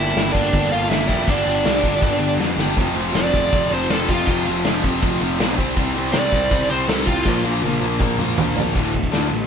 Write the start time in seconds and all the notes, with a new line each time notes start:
Already playing: G1 G2 D3 G3 A#3 D4 E4 G4 E5
0.15 G1, snare, crash
0.32 G1 D3 G3 D4 D5, kick
0.37 G2
0.53 G1, kick, crash
0.72 G1 F4 F5
0.89 G1 G2 D3 E4 E5, snare, crash
0.94 G3
1.07 F1 D3 G3 A#3 D4 G4, kick
1.12 G2
1.25 G1 G2 D3 G3 B3 G4, kick, crash
1.29 D4 D5
1.46 G1
1.64 C2, snare, crash
1.83 G1 D3 G3, kick
1.87 G2
2.02 G1, kick, crash
2.19 G1
2.37 F2 G2, snare
2.42 D3 G3
2.56 G1 D3 G3 B3 D4 G4, snare
2.61 G2
2.77 F1 F2 C3 F3, kick, crash
2.95 F1 F2 C3 F3, crash
3.13 F1 F2 C3 F3 D5, snare, crash
3.32 F1 F2 C3 F3, kick, crash
3.50 F1 F2 C3 F3, kick, crash
3.71 F1 F2 C3 F3 C5, crash
3.89 F1 F2 C3 F3 A4, snare, crash
4.08 F1 F2 C3 F3 F4, kick, crash
4.27 F1 F2 C3 F3, kick, crash
4.45 F1 F2 C3 F3, crash
4.65 F1 F2 C3 F3, snare, crash
4.84 F1 F2 C3 F3, kick, crash
5.01 F1 F2 C3 F3, kick, crash
5.21 F1 F2 C3 F3, crash
5.39 B1 F2 C3 F3, snare, crash
5.57 C2 C3 G3 C4, kick, crash
5.76 C2 C3 G3 C4, kick, crash
5.94 C2 C3 G3 C4, crash
6.12 C2 C3 G3 C4 D5, snare, crash
6.32 C2 C3 G3 C4, kick, crash
6.51 C2 C3 G3 C4, kick, crash
6.68 C2 C3 G3 C4 C5, crash
6.88 C2 C3 G3 C4 A4, snare, crash
7.06 C2 C3 G3 C4 F4, kick, crash
7.25 A#1 A#2 F3 A#3, kick, snare
7.43 A#1 A#2 F3 A#3
7.62 A#1 A#2 F3 A#3, high tom
7.80 A#1 A#2 F3 A#3
7.99 A#1 A#2 F3 A#3, kick, mid tom
8.18 A#1 A#2 F3 A#3, mid tom
8.36 A#1 A#2 F3 A#3, floor tom
8.55 A#1 A#2 F3 A#3, floor tom
8.74 D1 D2 A2 D3, kick, open hi-hat
8.80 D3
8.93 D2 A2, kick
9.04 kick
9.11 D2 A2 D3, snare, open hi-hat
9.31 A1 D2 A2